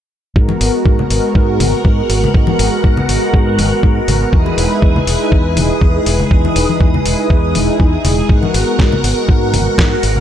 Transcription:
0.35 0.51 G#2 medium
0.35 1.07 G#3 medium
0.35 1.07 B3 medium
0.35 1.08 F#4 medium
0.35 4.29 A#4 medium
0.35 1.08 A#4 medium
0.35 4.29 F#5 medium
0.35 kick loud
0.49 high conga medium
0.61 0.69 G#1 medium
0.61 open hi-hat loud
0.86 1.01 G#2 medium
0.86 kick loud
0.99 low conga medium
1.09 1.18 G#1 medium
1.09 2.31 G#3 medium
1.09 2.31 B3 medium
1.09 2.32 F#4 medium
1.09 2.32 A#4 medium
1.09 open hi-hat medium
1.35 1.61 G#2 medium
1.35 kick loud
1.60 1.72 G#1 medium
1.60 open hi-hat medium
1.60 high conga medium
1.60 low conga medium
1.73 muted fingered electric bass stroke soft
1.85 2.00 G#2 medium
1.85 kick loud
2.09 2.25 G#1 medium
2.09 open hi-hat medium
2.24 low conga medium
2.33 2.50 G#2 medium
2.33 3.05 G#3 medium
2.33 3.06 B3 medium
2.33 3.06 F#4 medium
2.33 3.07 A#4 medium
2.33 kick loud
2.47 high conga medium
2.59 2.67 G#1 medium
2.59 open hi-hat loud
2.84 3.00 G#2 medium
2.84 kick loud
2.97 low conga medium
3.08 3.17 G#1 medium
3.08 4.30 G#3 medium
3.08 4.30 B3 medium
3.08 4.30 F#4 medium
3.08 4.31 A#4 medium
3.08 open hi-hat loud
3.34 3.60 G#2 medium
3.34 kick loud
3.58 3.71 G#1 medium
3.58 open hi-hat medium
3.58 high conga medium
3.72 muted fingered electric bass stroke soft
3.83 3.99 G#2 loud
3.83 kick loud
4.08 4.23 G#1 medium
4.08 open hi-hat loud
4.08 low conga medium
4.32 4.48 E2 medium
4.32 5.04 G#3 medium
4.32 5.04 D#4 medium
4.32 5.05 E4 medium
4.32 8.26 G#4 medium
4.32 5.05 B4 medium
4.32 8.26 D#6 medium
4.32 kick loud
4.46 high conga medium
4.58 4.65 E1 loud
4.58 open hi-hat loud
4.82 4.98 E2 medium
4.82 kick loud
4.96 low conga medium
5.06 5.15 E1 medium
5.06 6.28 G#3 medium
5.06 6.28 D#4 medium
5.06 6.28 E4 medium
5.06 6.29 B4 medium
5.06 open hi-hat loud
5.32 5.58 E2 medium
5.32 kick loud
5.57 5.69 E1 medium
5.57 open hi-hat loud
5.57 high conga medium
5.57 low conga medium
5.70 muted fingered electric bass stroke soft
5.81 5.97 E2 medium
5.81 kick loud
6.06 6.22 E1 medium
6.06 open hi-hat loud
6.20 low conga medium
6.30 6.47 E2 medium
6.30 7.02 G#3 medium
6.30 7.03 D#4 medium
6.30 7.03 E4 medium
6.30 7.03 B4 medium
6.30 kick loud
6.45 high conga medium
6.56 6.64 E1 loud
6.56 open hi-hat loud
6.69 high conga medium
6.80 6.96 E2 medium
6.80 kick loud
6.94 low conga medium
7.05 7.14 E1 medium
7.05 7.53 G#3 medium
7.05 7.53 D#4 medium
7.05 7.53 E4 medium
7.05 7.53 B4 medium
7.05 open hi-hat loud
7.30 7.57 E2 medium
7.30 kick loud
7.54 7.68 E1 medium
7.54 8.26 G#3 loud
7.54 8.27 D#4 medium
7.54 8.27 E4 medium
7.54 8.27 G#4 loud
7.54 open hi-hat loud
7.54 high conga medium
7.68 muted fingered electric bass stroke soft
7.80 7.95 E2 medium
7.80 kick loud
8.05 8.20 E1 medium
8.05 open hi-hat loud
8.05 low conga medium
8.29 8.45 G#2 medium
8.29 9.01 G#3 medium
8.29 9.01 B3 medium
8.29 9.01 F#4 medium
8.29 10.20 A#4 medium
8.29 9.02 A#4 medium
8.29 10.20 F#5 medium
8.29 kick loud
8.43 high conga medium
8.54 8.62 G#1 medium
8.54 open hi-hat medium
8.79 8.95 G#2 medium
8.79 kick loud
8.79 snare medium
8.92 low conga medium
9.03 9.12 G#1 medium
9.03 10.20 G#3 medium
9.03 10.20 B3 medium
9.03 10.20 F#4 medium
9.03 10.20 A#4 medium
9.03 open hi-hat loud
9.29 9.55 G#2 medium
9.29 kick loud
9.53 9.66 G#1 medium
9.53 open hi-hat loud
9.53 high conga medium
9.53 low conga medium
9.67 muted fingered electric bass stroke soft
9.78 9.94 G#2 medium
9.78 kick loud
9.78 snare loud
10.03 10.19 G#1 medium
10.03 open hi-hat loud
10.16 low conga medium

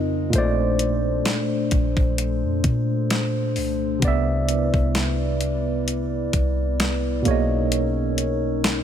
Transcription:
0.00 0.31 F2 loud
0.00 0.33 C#3 medium
0.00 0.29 C4 medium
0.00 0.33 C4 medium
0.00 0.29 D#4 medium
0.00 0.29 F4 medium
0.00 0.34 F4 medium
0.00 0.35 A#4 medium
0.00 0.31 D#5 medium
0.30 1.22 A#1 loud
0.30 3.97 A#2 medium
0.30 3.98 A3 medium
0.30 3.99 A3 medium
0.30 3.99 D4 medium
0.30 3.99 A4 medium
0.30 3.99 C5 medium
0.30 closed hi-hat medium
0.35 4.00 C5 medium
0.35 4.01 D5 medium
0.79 closed hi-hat medium
1.25 snare loud
1.25 closed hi-hat medium
1.71 1.96 A#1 loud
1.71 kick loud
1.71 closed hi-hat medium
1.97 2.45 A#1 loud
1.97 kick loud
2.18 closed hi-hat medium
2.43 2.63 F2 loud
2.64 3.58 A#2 loud
2.64 kick loud
2.64 closed hi-hat medium
3.10 snare loud
3.10 closed hi-hat medium
3.56 4.00 C2 loud
3.56 open hi-hat medium
3.99 4.71 C2 loud
3.99 7.20 C3 medium
3.99 7.21 B3 medium
3.99 7.22 B3 medium
3.99 7.22 E4 medium
3.99 7.22 B4 medium
3.99 7.22 D5 medium
3.99 kick loud
3.99 closed hi-hat medium
4.05 7.23 D5 medium
4.05 7.24 E5 medium
4.49 closed hi-hat medium
4.74 6.29 C2 loud
4.74 kick loud
4.95 snare loud
4.95 closed hi-hat medium
5.41 closed hi-hat medium
5.88 closed hi-hat medium
6.33 7.22 C2 loud
6.33 kick medium
6.33 closed hi-hat medium
6.80 snare loud
6.80 closed hi-hat medium
7.22 8.84 B1 loud
7.22 8.84 B2 medium
7.22 8.84 A#3 medium
7.22 8.84 C#4 medium
7.22 8.84 D#4 medium
7.22 8.39 G#4 medium
7.22 8.84 A#4 medium
7.22 8.84 C#5 medium
7.22 closed hi-hat medium
7.28 8.84 C#5 medium
7.28 8.84 D#5 medium
7.72 closed hi-hat medium
8.18 closed hi-hat medium
8.64 snare loud
8.64 closed hi-hat medium

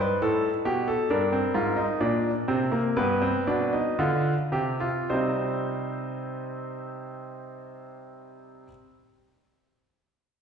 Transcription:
0.00 1.05 D#4 medium
0.00 0.21 B4 medium
0.22 0.49 A2 medium
0.22 0.49 A4 medium
0.65 0.92 B2 medium
0.65 0.86 G4 medium
0.88 1.09 A4 medium
1.10 1.38 G2 medium
1.10 1.31 D4 medium
1.10 2.93 A#4 medium
1.32 1.54 C4 medium
1.54 1.83 G#2 medium
1.54 1.76 F4 medium
1.76 1.99 D#4 medium
2.01 2.30 A#2 medium
2.01 2.30 D4 medium
2.48 2.78 C3 medium
2.48 2.71 C4 medium
2.72 2.95 A#3 medium
2.97 3.28 G2 medium
2.97 3.20 B3 medium
2.97 5.04 B4 medium
3.22 3.46 C4 medium
3.47 3.79 B2 medium
3.47 3.72 D4 medium
3.73 3.98 D#4 medium
3.99 4.32 D3 medium
3.99 4.32 F4 medium
4.52 4.86 C3 medium
4.52 4.79 G4 medium
4.80 5.07 F4 medium
5.09 8.65 C3 medium
5.09 8.68 G3 medium
5.09 8.68 C4 medium
5.09 8.64 D#4 medium
5.09 8.65 C5 medium

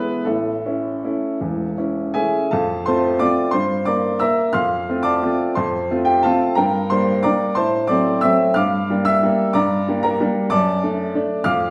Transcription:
0.00 0.22 G#3 soft
0.00 0.22 B3 medium
0.00 0.23 E4 soft
0.00 0.25 B4 medium
0.25 0.63 A1 soft
0.25 0.63 A2 medium
0.25 2.14 A4 medium
0.66 1.00 C#4 soft
0.66 1.00 E4 medium
1.04 1.37 A3 soft
1.04 1.37 C#4 soft
1.04 1.37 E4 medium
1.41 1.76 E1 soft
1.41 1.76 E2 medium
1.78 2.12 C#4 soft
1.78 2.12 E4 soft
2.14 2.49 A3 soft
2.14 2.49 C#4 soft
2.14 2.49 E4 soft
2.14 2.50 G#4 medium
2.14 2.50 E5 medium
2.14 2.52 G#5 medium
2.51 2.86 F2 medium
2.51 2.84 A4 medium
2.51 2.84 F5 medium
2.51 2.86 A5 medium
2.86 3.18 A3 medium
2.86 3.18 C4 soft
2.86 3.18 F4 medium
2.86 3.18 C5 medium
2.86 3.19 A5 medium
2.86 3.20 C6 loud
3.19 3.51 A3 medium
3.19 3.51 C4 medium
3.19 3.52 F4 medium
3.19 3.52 D5 medium
3.19 3.54 D6 loud
3.51 3.86 G2 medium
3.51 3.84 C5 medium
3.51 3.86 C6 loud
3.85 4.17 A#3 medium
3.85 4.18 A#4 medium
3.85 4.18 D5 medium
3.85 4.20 D6 medium
4.19 4.51 A#3 medium
4.19 4.52 A#4 medium
4.19 4.52 E5 medium
4.19 4.52 A#5 medium
4.19 4.54 E6 loud
4.53 4.87 F2 medium
4.53 5.01 F5 medium
4.53 5.01 C6 medium
4.53 5.04 F6 loud
4.89 5.19 A3 medium
4.89 5.19 C4 medium
4.89 5.20 F4 medium
5.03 5.52 D5 medium
5.03 5.52 A5 medium
5.03 5.55 D6 loud
5.23 5.53 A3 medium
5.23 5.53 C4 medium
5.23 5.53 F4 medium
5.55 5.89 F2 medium
5.55 6.04 C5 medium
5.55 6.04 A5 medium
5.55 6.07 C6 medium
5.91 6.22 A3 medium
5.91 6.22 C4 medium
5.91 6.22 F4 medium
6.05 6.23 G4 medium
6.05 6.23 G5 medium
6.23 6.54 A3 medium
6.23 6.55 C4 medium
6.23 6.55 F4 medium
6.23 6.55 A4 medium
6.23 6.55 F5 medium
6.23 6.57 A5 loud
6.55 6.89 G2 medium
6.55 6.88 A#4 medium
6.55 6.88 G5 medium
6.55 6.89 A#5 medium
6.90 7.21 G3 medium
6.90 7.21 A#3 medium
6.90 7.22 D4 medium
6.90 7.22 C5 medium
6.90 7.24 C6 loud
7.23 7.53 G3 medium
7.23 7.53 A#3 medium
7.23 7.54 D4 medium
7.23 7.54 D5 medium
7.23 7.54 A#5 medium
7.23 7.55 D6 loud
7.55 7.88 A2 medium
7.55 7.86 C5 medium
7.55 7.86 A5 medium
7.55 7.87 C6 loud
7.87 8.20 F#3 medium
7.87 8.20 A3 medium
7.87 8.20 C4 medium
7.87 8.20 D5 medium
7.87 8.22 D6 medium
8.21 8.53 F#3 medium
8.21 8.53 A3 medium
8.21 8.53 C4 medium
8.21 8.54 E5 medium
8.21 8.55 E6 loud
8.54 8.87 G2 medium
8.54 9.01 F5 medium
8.54 9.01 D6 medium
8.54 9.04 F6 loud
8.90 9.19 G3 medium
8.90 9.19 A#3 medium
8.90 9.19 D4 medium
9.05 9.51 E5 medium
9.05 9.54 E6 loud
9.23 9.52 G3 medium
9.23 9.52 A#3 medium
9.23 9.52 D4 medium
9.53 9.86 G2 medium
9.53 10.00 D5 medium
9.53 10.00 A#5 medium
9.53 10.03 D6 loud
9.88 10.17 G3 medium
9.88 10.18 A#3 medium
9.88 10.18 D4 medium
10.03 10.19 A#4 medium
10.03 10.20 A#5 medium
10.20 10.49 G3 medium
10.20 10.49 A#3 medium
10.20 10.49 D4 medium
10.50 10.82 F#2 medium
10.50 11.41 D5 medium
10.50 11.41 A5 medium
10.50 11.43 D6 loud
10.83 11.11 A3 medium
10.83 11.11 D4 medium
11.15 11.43 A3 medium
11.15 11.43 D4 medium
11.44 11.70 F2 medium
11.44 11.70 F5 medium
11.44 11.70 D6 medium
11.44 11.70 F6 loud

